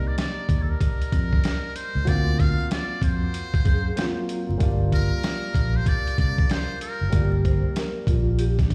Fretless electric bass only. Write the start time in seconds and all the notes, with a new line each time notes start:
0.49 D#2
1.01 muted fretless electric bass stroke
1.12 F2
1.95 C#2
2.07 D2
3.02 F2
3.54 muted fretless electric bass stroke
3.65 F#2
4.49 F#1
4.60 G1
5.54 A#1
6.07 muted fretless electric bass stroke
6.18 C2
7.01 F#1
7.13 G1
8.07 A#1